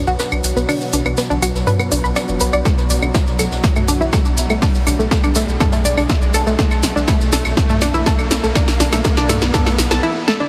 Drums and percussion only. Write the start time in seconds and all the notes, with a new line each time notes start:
0.07 maracas
0.19 snare, closed hi-hat, maracas
0.32 claves, maracas
0.44 closed hi-hat, open hi-hat, maracas
0.57 closed hi-hat, maracas
0.69 open hi-hat, claves, maracas
0.81 maracas
0.93 closed hi-hat, open hi-hat, maracas
1.06 closed hi-hat, claves, maracas
1.17 snare, closed hi-hat, maracas
1.31 maracas
1.42 closed hi-hat, open hi-hat, claves, maracas
1.55 snare, maracas
1.67 closed hi-hat, mid tom, maracas
1.80 claves, maracas
1.92 closed hi-hat, open hi-hat, maracas
2.05 maracas
2.16 snare, closed hi-hat, claves, maracas
2.28 maracas
2.40 snare, closed hi-hat, open hi-hat, maracas
2.53 claves, maracas
2.65 kick, snare, closed hi-hat, claves, maracas
2.78 snare, maracas
2.90 closed hi-hat, open hi-hat, maracas
3.02 claves, maracas
3.14 kick, snare, closed hi-hat, maracas
3.27 snare, maracas
3.39 snare, closed hi-hat, open hi-hat, claves, maracas
3.52 snare, maracas
3.64 kick, snare, closed hi-hat, maracas
3.76 mid tom, claves, maracas
3.88 closed hi-hat, open hi-hat, maracas
4.01 maracas
4.13 kick, snare, closed hi-hat, claves, maracas
4.25 maracas
4.37 closed hi-hat, open hi-hat, maracas
4.50 closed hi-hat, claves, maracas
4.62 kick, snare, open hi-hat, maracas
4.75 maracas
4.86 closed hi-hat, open hi-hat, claves, maracas
4.99 closed hi-hat, maracas
5.11 kick, snare, closed hi-hat, maracas
5.24 claves, maracas
5.35 snare, closed hi-hat, open hi-hat, maracas
5.49 maracas
5.60 kick, snare, closed hi-hat, mid tom, claves, maracas
5.72 snare, closed hi-hat, maracas
5.85 open hi-hat, maracas
5.97 snare, closed hi-hat, claves, maracas
6.09 kick, snare, closed hi-hat, maracas
6.22 maracas
6.34 snare, closed hi-hat, open hi-hat, claves, maracas
6.47 maracas
6.59 kick, snare, closed hi-hat, maracas
6.71 snare, claves, maracas
6.83 snare, closed hi-hat, open hi-hat, maracas
6.97 maracas
7.07 kick, snare, closed hi-hat, claves, maracas
7.21 snare, maracas
7.32 snare, closed hi-hat, open hi-hat, maracas
7.45 snare, claves, maracas
7.57 kick, snare, closed hi-hat, maracas
7.70 mid tom, maracas
7.81 snare, closed hi-hat, open hi-hat, claves, maracas
7.94 maracas
8.06 kick, snare, closed hi-hat, maracas
8.19 claves, maracas
8.31 snare, closed hi-hat, open hi-hat, maracas
8.43 snare, maracas
8.55 kick, snare, closed hi-hat, claves, maracas
8.68 snare, closed hi-hat, maracas
8.79 snare, open hi-hat, maracas
8.92 snare, closed hi-hat, open hi-hat, claves, maracas
9.04 kick, snare, closed hi-hat, maracas
9.17 snare, maracas
9.29 snare, closed hi-hat, mid tom, open hi-hat, claves, maracas
9.41 snare, maracas
9.53 kick, snare, closed hi-hat, mid tom, maracas
9.66 snare, closed hi-hat, claves, maracas
9.78 snare, closed hi-hat, open hi-hat, maracas
9.91 snare, maracas
10.28 snare